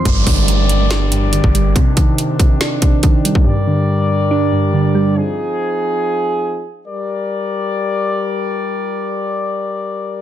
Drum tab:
HH |x-o-x-x-x-x-x-x-|x-x-x-x-x-x-x-x-|----------------|----------------|
SD |--------o-------|--------o-------|----------------|----------------|
BD |o-o----------o--|o-o---o---o-o--o|----------------|----------------|

HH |----------------|----------------|
SD |----------------|----------------|
BD |----------------|----------------|